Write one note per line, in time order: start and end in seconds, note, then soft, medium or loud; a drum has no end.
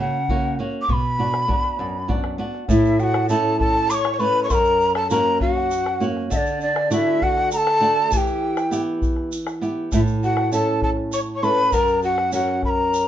0.00 0.57 C#3 medium
0.00 0.16 A#3 soft
0.00 0.16 C#4 soft
0.00 0.17 F#4 medium
0.00 0.56 F#5 medium
0.29 0.58 A#3 soft
0.29 0.58 C#4 soft
0.29 0.58 F#4 medium
0.29 bombo low medium
0.59 0.83 A#3 soft
0.59 0.83 C#4 soft
0.59 0.83 F#4 soft
0.82 0.91 D6 medium
0.89 1.48 B2 medium
0.89 0.94 C#6 medium
0.89 bombo low medium
0.93 2.10 B5 medium
1.19 1.46 B3 soft
1.19 1.47 D4 soft
1.19 1.48 F#4 soft
1.34 bombo rim soft
1.48 1.96 B3 medium
1.48 1.97 D4 soft
1.48 1.97 F#4 medium
1.48 bombo rim soft
1.48 bombo low medium
1.64 bombo rim soft
1.79 2.38 F#2 soft
1.79 bombo rim soft
2.08 2.37 B3 soft
2.08 2.38 D4 soft
2.08 2.38 F#4 medium
2.08 bombo rim soft
2.08 bombo low medium
2.24 bombo rim soft
2.38 2.63 B3 soft
2.38 2.63 D4 soft
2.38 2.63 F#4 medium
2.54 bombo rim soft
2.68 4.46 A2 medium
2.68 3.02 E4 medium
2.68 3.01 E5 medium
2.68 bombo rim soft
2.68 bombo low medium
2.68 shaker medium
2.85 shaker soft
2.99 3.28 F#4 medium
2.99 3.05 G5 medium
2.99 shaker soft
3.04 3.29 F#5 medium
3.14 bombo rim medium
3.29 3.88 A3 medium
3.29 3.88 C#4 soft
3.29 3.88 E4 medium
3.29 3.57 A4 medium
3.29 3.58 A5 medium
3.29 shaker medium
3.45 bombo rim soft
3.59 3.91 A4 medium
3.59 3.92 A5 medium
3.59 bombo rim soft
3.59 bombo low medium
3.75 bombo rim soft
3.89 4.13 C#5 medium
3.89 3.95 D6 medium
3.89 bombo rim soft
3.89 shaker medium
3.94 4.14 C#6 loud
4.05 bombo rim medium
4.13 4.21 C#5 medium
4.13 4.22 C#6 medium
4.19 4.49 A3 soft
4.19 4.49 C#4 soft
4.19 4.49 E4 soft
4.19 4.43 B4 medium
4.19 4.43 B5 medium
4.19 shaker soft
4.35 bombo rim soft
4.44 4.51 C#5 medium
4.44 4.52 C#6 medium
4.49 6.27 F#2 medium
4.49 4.94 A#4 loud
4.49 4.55 B5 medium
4.49 bombo rim soft
4.49 bombo low medium
4.49 shaker medium
4.54 4.95 A#5 medium
4.65 shaker soft
4.81 shaker soft
4.94 5.09 A4 medium
4.94 5.09 A5 medium
4.94 bombo rim medium
5.10 5.69 A#3 soft
5.10 5.69 C#4 soft
5.10 5.69 F#4 medium
5.10 5.38 A#4 medium
5.10 5.39 A#5 medium
5.10 shaker medium
5.25 bombo rim soft
5.40 6.04 F#4 medium
5.40 6.05 F#5 medium
5.40 bombo rim soft
5.40 bombo low medium
5.56 bombo rim soft
5.71 bombo rim soft
5.71 shaker medium
5.86 bombo rim soft
6.00 6.30 A#3 medium
6.00 6.30 C#4 soft
6.00 6.30 F#4 medium
6.00 shaker soft
6.17 bombo rim soft
6.30 8.07 D3 medium
6.30 6.59 D4 medium
6.30 6.38 E5 medium
6.30 bombo rim soft
6.30 bombo low medium
6.30 shaker medium
6.37 6.59 D5 medium
6.46 shaker soft
6.61 6.89 D4 medium
6.61 6.89 D5 medium
6.61 shaker soft
6.76 bombo rim medium
6.90 7.49 A3 medium
6.90 7.49 D4 soft
6.90 7.24 E4 medium
6.90 7.49 F#4 medium
6.90 7.24 E5 medium
6.90 shaker medium
7.07 bombo rim soft
7.22 7.52 F#4 medium
7.22 7.52 F#5 medium
7.22 bombo rim soft
7.22 bombo low medium
7.37 bombo rim soft
7.51 8.15 A4 medium
7.51 7.58 A#5 medium
7.51 bombo rim soft
7.51 shaker loud
7.57 8.13 A5 loud
7.67 bombo rim medium
7.80 8.10 A3 medium
7.80 8.10 D4 soft
7.80 8.10 F#4 medium
7.80 shaker soft
7.97 bombo rim soft
8.11 9.88 E3 medium
8.11 8.80 G4 medium
8.11 8.18 A5 medium
8.11 bombo low medium
8.11 shaker loud
8.17 8.80 G5 medium
8.27 bombo rim soft
8.27 shaker soft
8.42 bombo rim soft
8.57 bombo rim medium
8.57 shaker soft
8.71 9.30 B3 medium
8.71 9.30 E4 soft
8.71 9.30 G4 soft
8.71 shaker medium
9.02 bombo low medium
9.02 shaker soft
9.16 bombo rim soft
9.32 shaker loud
9.47 bombo rim medium
9.47 shaker soft
9.61 9.91 B3 soft
9.61 9.91 E4 soft
9.61 9.91 G4 soft
9.61 shaker soft
9.92 11.69 A2 medium
9.92 10.01 E4 medium
9.92 10.00 E5 medium
9.92 bombo rim soft
9.92 bombo low medium
9.92 shaker medium
10.07 shaker soft
10.23 10.51 F#4 medium
10.23 10.51 F#5 medium
10.23 shaker soft
10.37 bombo rim medium
10.52 11.11 C#4 medium
10.52 11.11 E4 soft
10.52 10.81 A4 medium
10.52 11.11 A4 medium
10.52 10.81 A5 medium
10.52 shaker loud
10.67 bombo rim soft
10.82 10.90 A4 medium
10.82 10.90 A5 medium
10.82 bombo rim soft
10.82 bombo low medium
10.97 bombo rim soft
11.11 11.19 C#5 medium
11.11 11.19 C#6 medium
11.11 bombo rim soft
11.11 shaker loud
11.35 11.45 C#5 medium
11.35 11.45 C#6 medium
11.43 11.72 C#4 soft
11.43 11.72 E4 soft
11.43 11.72 A4 medium
11.43 11.74 B4 medium
11.43 11.75 B5 medium
11.43 shaker soft
11.58 bombo rim soft
11.72 13.08 F#2 medium
11.72 12.03 A#4 medium
11.72 12.03 A#5 medium
11.72 bombo rim soft
11.72 bombo low medium
11.72 shaker medium
11.88 shaker soft
12.03 12.31 F#4 medium
12.03 12.32 F#5 medium
12.03 shaker soft
12.18 bombo rim soft
12.32 12.91 C#4 medium
12.32 12.91 F#4 medium
12.32 12.61 F#4 medium
12.32 12.92 A#4 medium
12.32 12.62 F#5 medium
12.32 shaker loud
12.48 bombo rim soft
12.63 13.08 A#4 medium
12.63 12.70 B5 medium
12.63 bombo rim soft
12.63 bombo low medium
12.69 13.08 A#5 medium
12.78 bombo rim soft
12.94 bombo rim soft
12.94 shaker medium